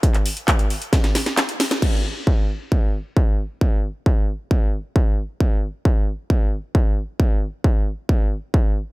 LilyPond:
\new DrumStaff \with { instrumentName = "Drums" } \drummode { \time 4/4 \tempo 4 = 134 <hh bd>16 <hc hh>16 hho16 hh16 <hc hh bd>16 hh16 hho16 hh16 <hh bd sn>16 <hh sn>16 <hho sn>16 <hh sn>16 <hc hh sn>16 hh16 <hho sn>16 <hh sn>16 | <cymc bd>4 bd4 bd4 bd4 | bd4 bd4 bd4 bd4 | bd4 bd4 bd4 bd4 |
bd4 bd4 bd4 bd4 | }